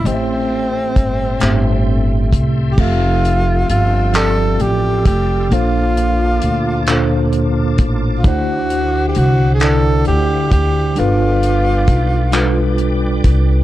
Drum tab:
CC |------|x-----|------|------|
HH |x-xx-x|-xxxxx|xxxxxx|xxxxxx|
CP |---x--|---x--|---x--|---x--|
BD |--o--o|o----o|-----o|o----o|

CC |------|
HH |xxxxxx|
CP |---x--|
BD |--o--o|